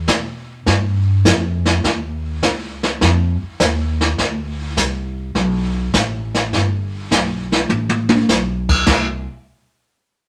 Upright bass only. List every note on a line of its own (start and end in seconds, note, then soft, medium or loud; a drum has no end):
0.08 0.64 B2 medium
0.66 1.23 G2 medium
1.25 1.82 F2 medium
1.84 2.40 D#2 medium
2.43 2.99 C#2 medium
3.01 3.38 F2 loud
3.42 muted upright bass stroke soft
3.60 4.16 D#2 medium
4.18 4.75 D2 medium
4.77 5.33 C2 medium
5.35 5.92 B1 medium
5.94 6.51 A1 medium
6.53 7.10 G1 medium
7.11 7.68 B1 medium
7.69 8.27 A1 medium
8.29 8.86 B1 medium
8.87 9.25 C2 medium